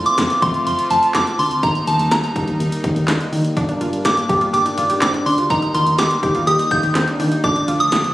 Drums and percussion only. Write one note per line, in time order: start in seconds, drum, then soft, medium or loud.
0.06 closed hi-hat medium
0.18 snare loud
0.18 closed hi-hat medium
0.30 closed hi-hat medium
0.42 kick loud
0.42 closed hi-hat medium
0.54 closed hi-hat medium
0.67 closed hi-hat medium
0.79 closed hi-hat medium
0.90 closed hi-hat medium
1.03 closed hi-hat medium
1.15 snare loud
1.15 clap medium
1.15 closed hi-hat medium
1.27 closed hi-hat soft
1.39 open hi-hat medium
1.51 closed hi-hat soft
1.63 kick loud
1.63 closed hi-hat medium
1.75 closed hi-hat soft
1.87 closed hi-hat medium
1.99 closed hi-hat medium
2.11 snare loud
2.11 closed hi-hat medium
2.24 closed hi-hat medium
2.36 kick loud
2.36 closed hi-hat medium
2.48 closed hi-hat medium
2.60 closed hi-hat medium
2.72 closed hi-hat medium
2.84 kick loud
2.84 closed hi-hat medium
2.96 closed hi-hat medium
3.08 snare loud
3.08 clap medium
3.08 closed hi-hat medium
3.21 closed hi-hat soft
3.33 open hi-hat medium
3.45 closed hi-hat soft
3.57 kick loud
3.57 closed hi-hat medium
3.69 closed hi-hat soft
3.81 closed hi-hat medium
3.93 closed hi-hat medium
4.05 snare loud
4.05 closed hi-hat medium
4.17 closed hi-hat medium
4.29 kick loud
4.29 closed hi-hat medium
4.41 closed hi-hat medium
4.54 closed hi-hat medium
4.66 closed hi-hat medium
4.78 closed hi-hat medium
4.90 closed hi-hat medium
5.02 snare loud
5.02 clap medium
5.02 closed hi-hat medium
5.14 closed hi-hat soft
5.26 open hi-hat medium
5.38 closed hi-hat soft
5.50 kick loud
5.50 closed hi-hat medium
5.62 closed hi-hat soft
5.75 closed hi-hat medium
5.87 closed hi-hat medium
5.98 snare loud
5.98 closed hi-hat medium
6.11 closed hi-hat medium
6.23 kick loud
6.23 closed hi-hat medium
6.35 closed hi-hat medium
6.47 closed hi-hat medium
6.59 closed hi-hat medium
6.71 kick loud
6.71 closed hi-hat medium
6.83 closed hi-hat medium
6.95 snare loud
6.95 clap medium
6.95 closed hi-hat medium
7.08 closed hi-hat medium
7.20 open hi-hat medium
7.32 closed hi-hat soft
7.44 kick loud
7.44 closed hi-hat medium
7.56 closed hi-hat soft
7.68 closed hi-hat medium
7.80 closed hi-hat medium
7.92 snare loud
7.92 closed hi-hat medium
8.04 closed hi-hat medium